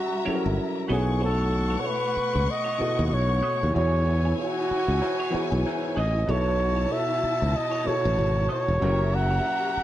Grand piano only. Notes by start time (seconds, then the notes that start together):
Already playing: F#3 G3 C#4 E4 A#4
0.25 F#3 G3 C#4 E4 A4
0.35 A#4
0.88 B2 A3 B3 E4
0.92 C#5
2.78 B2 B3 E4 A4
2.82 D#5
3.73 E3 B3 F#4 G#4
3.77 C#5
5.30 E3 B3 F#4 G#4 C#5
6.26 B2 B3 E4 A4
6.30 C#5
7.85 B2 B3 E4 A4
7.89 C#5
8.80 F#3 C#4 E4 G4
8.84 A#4